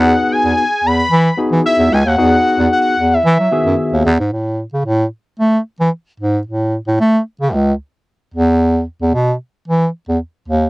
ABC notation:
X:1
M:4/4
L:1/16
Q:1/4=112
K:Alyd
V:1 name="Analog synth lead"
f2 g4 b4 z2 e2 g f- | f4 f3 e6- e z2 | z16 | z16 |
z16 |]
V:2 name="Tine electric piano"
[B,DFG]4 z6 [B,DFG]4 z2 | [B,DFG]6 z4 [D,B,FG]4 z2 | z16 | z16 |
z16 |]
V:3 name="Bass clarinet" clef=bass
E,,2 z E,, z2 E,,2 E,2 z E, z E,, C,, D,, | E,,2 z E,, z2 E,,2 E, F, z F,, z D,, E,, G,, | A,,3 C, A,,2 z2 A,2 z E, z2 G,,2 | A,,3 A,, A,2 z C, C,,2 z4 E,,2- |
E,,3 E,, B,,2 z2 E,2 z E,, z2 D,,2 |]